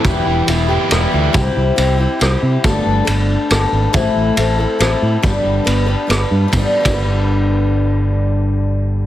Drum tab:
RD |x---x---x---|x---x---x---|x---x---x---|x---x---x---|
SD |--------r---|--------r---|--------r---|--------r---|
BD |o-----------|o-----------|o-----------|o-----------|

RD |x---x---x---|x--x--------|------------|
SD |--------r---|------------|------------|
BD |o-----------|o--o--------|------------|